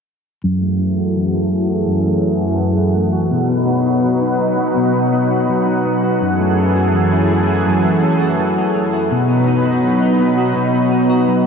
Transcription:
0.44 1.86 F#2 medium
0.44 3.30 F#2 medium
0.44 3.30 E3 medium
0.44 3.30 G#4 medium
0.44 3.30 A4 medium
0.44 11.47 F#5 medium
0.61 1.50 A3 soft
0.79 1.32 E4 soft
0.98 1.68 F#4 medium
1.16 2.58 E3 soft
1.34 2.22 E4 soft
1.52 2.04 A3 soft
1.69 2.41 F#4 soft
1.87 3.32 F#2 medium
2.05 2.94 A3 soft
2.23 2.75 E4 soft
2.41 3.12 F#4 soft
2.59 3.39 E3 soft
2.77 3.39 E4 soft
2.95 3.39 A3 soft
3.13 3.86 F#4 medium
3.31 4.75 B2 medium
3.31 6.19 B2 medium
3.31 6.19 F#3 medium
3.31 6.19 D#4 medium
3.31 6.19 B4 medium
3.49 4.38 B3 soft
3.67 4.20 D#4 soft
3.86 4.57 F#4 medium
4.04 5.48 F#3 soft
4.22 5.11 D#4 medium
4.39 4.93 B3 medium
4.57 5.31 F#4 soft
4.76 6.21 B2 medium
4.95 5.84 B3 soft
5.12 5.65 D#4 soft
5.31 6.03 F#4 medium
5.49 6.93 F#3 medium
5.66 6.28 D#4 soft
5.85 6.29 B3 medium
6.03 6.75 F#4 medium
6.21 7.65 F#2 medium
6.21 9.08 F#2 medium
6.21 9.08 E3 medium
6.21 9.08 G#4 medium
6.21 9.08 A4 medium
6.40 7.29 A3 soft
6.57 7.11 C#4 soft
6.75 7.48 F#4 medium
6.94 8.38 E3 soft
7.12 8.01 C#4 soft
7.30 7.83 A3 soft
7.49 8.21 F#4 soft
7.66 9.11 F#2 medium
7.85 8.74 A3 medium
8.02 8.56 C#4 medium
8.21 8.93 F#4 medium
8.39 9.18 E3 medium
8.57 9.18 C#4 soft
8.75 9.18 A3 medium
8.93 9.65 F#4 medium
9.11 10.54 B2 medium
9.11 11.47 B2 medium
9.11 11.47 F#3 medium
9.11 11.47 D#4 medium
9.11 11.47 B4 medium
9.28 10.18 B3 soft
9.47 10.00 D#4 soft
9.65 10.37 F#4 medium
9.83 11.27 F#3 soft
10.02 10.90 D#4 medium
10.20 10.72 B3 medium
10.38 11.09 F#4 medium
10.55 11.47 B2 medium
10.73 11.47 B3 soft
10.91 11.45 D#4 medium
11.10 11.47 F#4 medium
11.27 11.47 F#3 medium

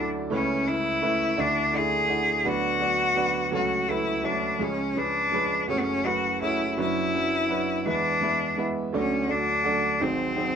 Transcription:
0.00 0.27 D2 medium
0.00 0.27 D3 medium
0.00 0.34 F#3 medium
0.00 0.34 D4 medium
0.00 0.31 E4 medium
0.00 0.34 A4 medium
0.00 0.34 D5 medium
0.00 0.34 E5 medium
0.30 1.35 C#2 medium
0.30 1.34 C#3 medium
0.30 0.59 A3 medium
0.30 0.60 C#4 medium
0.30 0.69 C#4 medium
0.30 0.60 E4 medium
0.30 0.60 B4 medium
0.30 0.61 C#5 medium
0.66 0.95 A3 medium
0.66 0.95 C#4 medium
0.66 0.96 E4 medium
0.66 1.41 E4 loud
0.66 0.96 B4 medium
0.66 0.96 E5 medium
1.02 1.35 A3 medium
1.02 1.38 C#4 medium
1.02 1.36 E4 medium
1.02 1.39 B4 medium
1.02 1.37 E5 medium
1.37 2.41 D2 medium
1.37 2.41 D3 medium
1.37 1.66 A3 medium
1.37 1.66 D4 medium
1.37 1.78 D4 loud
1.37 1.67 E4 medium
1.37 1.67 D5 medium
1.37 1.67 E5 medium
1.72 2.02 A3 medium
1.72 2.02 D4 medium
1.72 2.02 E4 medium
1.72 2.02 D5 medium
1.72 2.03 E5 medium
1.77 2.49 G#4 loud
2.08 2.45 A3 medium
2.08 2.44 D4 medium
2.08 2.45 E4 medium
2.08 2.45 D5 medium
2.08 2.46 F#5 medium
2.44 3.49 D2 medium
2.44 3.49 D3 medium
2.44 2.74 F#3 medium
2.44 2.74 B3 medium
2.44 2.74 D4 medium
2.44 3.53 F#4 loud
2.44 2.74 B4 medium
2.44 2.75 D5 medium
2.80 3.09 F#3 medium
2.80 3.09 B3 medium
2.80 3.10 D4 medium
2.80 3.10 B4 medium
2.80 3.10 D5 medium
3.15 3.50 F#3 medium
3.15 3.53 B3 medium
3.15 3.53 D4 medium
3.15 3.53 B4 medium
3.15 3.54 D5 medium
3.51 4.57 C#2 medium
3.51 3.81 F#3 medium
3.51 3.82 A3 medium
3.51 3.82 C#4 medium
3.51 3.91 F#4 loud
3.51 3.82 A4 medium
3.51 3.82 C#5 medium
3.88 4.17 F#3 medium
3.88 4.18 A3 medium
3.88 4.18 C#4 medium
3.88 4.27 E4 loud
3.88 4.18 A4 medium
3.88 4.18 B4 medium
4.23 4.60 F#3 medium
4.23 4.60 A3 medium
4.23 4.64 D4 medium
4.23 4.61 A4 medium
4.23 4.59 C#5 medium
4.23 4.61 E5 medium
4.59 5.65 C#2 medium
4.59 4.89 F3 medium
4.59 4.89 G#3 medium
4.59 4.90 C#4 medium
4.59 5.00 C#4 medium
4.59 4.90 G#4 medium
4.59 4.90 C#5 medium
4.95 5.25 F3 medium
4.95 5.25 G#3 soft
4.95 5.26 C#4 medium
4.95 5.68 D4 loud
4.95 5.26 G#4 soft
4.95 5.26 B4 medium
5.32 5.69 F3 medium
5.32 5.70 G#3 medium
5.32 5.67 G#4 medium
5.32 5.70 B4 medium
5.32 5.68 C#5 medium
5.68 6.74 F#1 medium
5.68 6.74 F#2 medium
5.68 5.98 F#3 medium
5.68 5.98 A3 medium
5.68 5.98 C#4 medium
5.68 5.81 C#4 loud
5.68 5.99 G#4 medium
5.68 5.99 C#5 medium
5.79 5.85 B3 medium
5.83 6.07 C#4 loud
6.04 6.34 F#3 medium
6.04 6.34 A3 medium
6.04 6.34 C#4 medium
6.04 6.41 F#4 loud
6.04 6.35 G#4 medium
6.04 6.35 B4 medium
6.41 6.76 F#3 medium
6.41 6.78 A3 medium
6.41 6.76 C#4 medium
6.41 6.75 E4 medium
6.41 6.79 G#4 medium
6.41 6.78 C#5 medium
6.77 7.82 F#1 medium
6.77 7.82 F#2 medium
6.77 7.07 F#3 medium
6.77 7.07 C#4 medium
6.77 7.07 D4 medium
6.77 7.83 E4 loud
6.77 7.08 B4 medium
6.77 7.08 C#5 medium
7.14 7.43 F#3 medium
7.14 7.43 C#4 medium
7.14 7.43 D4 medium
7.14 7.43 B4 soft
7.14 7.43 C#5 medium
7.49 7.86 F#3 medium
7.49 7.86 C#4 medium
7.49 7.86 D4 medium
7.49 7.85 B4 medium
7.49 7.86 C#5 medium
7.86 8.90 E2 medium
7.86 8.90 E3 medium
7.86 8.15 G#3 medium
7.86 8.15 B3 medium
7.86 8.63 D4 loud
7.86 8.15 E4 medium
7.86 8.15 B4 medium
7.86 8.16 E5 medium
8.21 8.50 G#3 medium
8.21 8.50 B3 medium
8.21 8.51 E4 medium
8.21 8.51 B4 medium
8.21 8.51 E5 medium
8.57 8.93 G#3 medium
8.57 8.93 B3 medium
8.57 8.94 E4 medium
8.57 8.94 B4 medium
8.57 8.94 E5 medium
8.93 9.96 D2 medium
8.93 9.96 D3 medium
8.93 9.22 F#3 medium
8.93 9.22 A3 medium
8.93 9.32 C#4 medium
8.93 9.22 D4 medium
8.93 9.22 A4 medium
8.93 9.22 D5 medium
9.27 9.56 F#3 medium
9.27 9.57 A3 medium
9.27 9.57 D4 medium
9.27 10.03 D4 loud
9.27 9.57 A4 medium
9.27 9.57 D5 medium
9.64 9.98 F#3 medium
9.64 10.00 A3 medium
9.64 10.01 D4 medium
9.64 10.01 A4 medium
9.64 10.01 D5 medium
10.00 10.56 G#1 medium
10.00 10.56 G#2 medium
10.00 10.28 F#3 medium
10.00 10.29 C4 medium
10.00 10.56 C4 loud
10.00 10.29 D#4 medium
10.00 10.29 G#4 medium
10.00 10.29 C5 medium
10.36 10.56 F#3 medium
10.36 10.56 C4 medium
10.36 10.56 D#4 medium
10.36 10.56 G#4 medium
10.36 10.56 C5 medium

